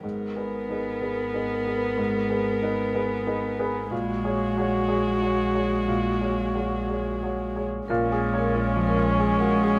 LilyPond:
<<
  \new Staff \with { instrumentName = "Vibraphone" } { \time 3/4 \key gis \dorian \tempo 4 = 92 r2. | r2. | r2. | r2. |
ais'16 r16 gis''16 ais'16 cis''16 eis''16 ais'16 eis''16 gis''16 ais'16 r16 gis''16 | }
  \new Staff \with { instrumentName = "Grand piano" } { \time 3/4 \key gis \dorian gis,8 <gis' b'>8 <dis' gis' b'>8 <gis' b'>8 <dis' gis' b'>8 <gis' b'>8 | gis,8 <gis' b'>8 <dis' gis' b'>8 <gis' b'>8 <dis' gis' b'>8 <gis' b'>8 | ais,8 <gis' cis''>8 <fis' gis' cis''>8 <gis' cis''>8 <fis' gis' cis''>8 <gis' cis''>8 | ais,8 <gis' cis''>8 <fis' gis' cis''>8 <gis' cis''>8 <fis' gis' cis''>8 <gis' cis''>8 |
\tuplet 3/2 { ais,8 gis'8 cis''8 eis'8 eis8 eis'8 gis'8 fis'8 gis'8 } | }
  \new Staff \with { instrumentName = "Viola" } { \time 3/4 \key gis \dorian ais'2.~ | ais'2. | fis'2.~ | fis'2~ fis'8 r8 |
cis'2. | }
  \new Staff \with { instrumentName = "Cello" } { \clef bass \time 3/4 \key gis \dorian b2.~ | b2. | gis2.~ | gis2~ gis8 r8 |
gis2. | }
  \new Staff \with { instrumentName = "Double bass" } { \clef bass \time 3/4 \key gis \dorian gis,,2.~ | gis,,2. | ais,,2.~ | ais,,2. |
ais,,2. | }
>>